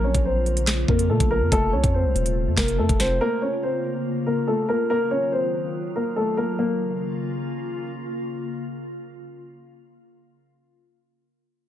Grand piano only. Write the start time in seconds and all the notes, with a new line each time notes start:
0.04 C#4 C#5
0.25 C4 C5
0.89 A#3 A#4
1.10 A3 A4
1.31 A#3 A#4
1.52 A3 A4
1.73 C#4 C#5
1.94 C4 C5
2.57 A#3 A#4
2.78 A3 A4
3.00 C4 C5
3.21 A#3 A#4
3.42 C#4 C#5
3.63 C4 C5
4.26 A#3 A#4
4.48 A3 A4
4.69 A#3 A#4
4.90 A#3 A#4
5.11 C#4 C#5
5.32 C4 C5
5.96 A#3 A#4
6.16 A3 A4
6.37 A#3 A#4
6.59 A#3